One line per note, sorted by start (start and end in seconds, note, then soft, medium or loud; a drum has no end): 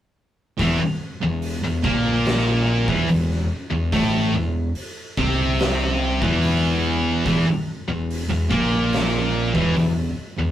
0.59 0.79 E1 medium
0.59 0.80 E2 loud
0.59 0.80 E3 loud
0.59 kick loud
0.59 open hi-hat medium
0.81 muted picked electric bass stroke soft
0.81 muted distorted electric guitar stroke medium
1.23 1.62 E1 medium
1.23 1.57 E2 medium
1.42 open hi-hat medium
1.63 1.83 E1 medium
1.63 1.85 E2 medium
1.84 2.84 A#1 loud
1.84 2.88 A#2 medium
1.84 2.88 A#3 loud
1.84 kick loud
2.25 snare loud
2.25 open hi-hat medium
2.88 3.08 E1 loud
2.88 3.09 E2 medium
2.88 3.09 E3 loud
2.88 kick loud
3.08 3.48 E1 medium
3.08 3.44 E2 medium
3.08 open hi-hat medium
3.31 snare soft
3.72 3.91 E1 medium
3.72 3.93 E2 medium
3.92 4.32 A1 loud
3.92 4.34 A2 medium
3.92 4.34 A3 loud
3.92 kick loud
3.92 open hi-hat medium
4.34 4.73 E1 medium
4.34 4.69 E2 medium
4.75 open hi-hat medium
5.17 6.18 C2 loud
5.17 6.21 C3 medium
5.17 6.21 C4 medium
5.17 kick loud
5.59 snare loud
5.59 open hi-hat medium
6.22 7.22 E1 medium
6.22 7.25 E2 loud
6.22 7.25 E3 medium
6.22 kick loud
6.43 open hi-hat medium
7.25 7.45 E1 medium
7.25 7.46 E2 loud
7.25 7.46 E3 loud
7.25 kick loud
7.25 open hi-hat medium
7.48 muted picked electric bass stroke soft
7.48 muted distorted electric guitar stroke medium
7.88 8.27 E1 medium
7.88 8.22 E2 medium
8.10 open hi-hat medium
8.29 8.49 E1 medium
8.29 8.51 E2 medium
8.51 9.51 A#1 medium
8.51 9.54 A#2 medium
8.51 9.55 A#3 loud
8.51 kick loud
8.93 snare loud
8.93 open hi-hat medium
9.55 9.74 E1 medium
9.55 9.75 E2 medium
9.55 9.75 E3 loud
9.55 kick loud
9.76 10.14 E1 medium
9.76 10.10 E2 medium
9.76 open hi-hat medium
10.38 10.51 E1 medium
10.38 10.51 E2 medium